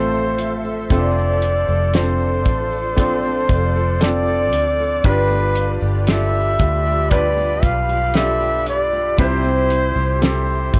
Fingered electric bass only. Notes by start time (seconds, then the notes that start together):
Already playing: A1
0.91 F1
1.68 F1
2.46 A1
3.49 F1
4.53 D2
5.04 G1
5.82 G1
6.59 D2
7.63 B1
9.18 C2
9.96 C2
10.74 G1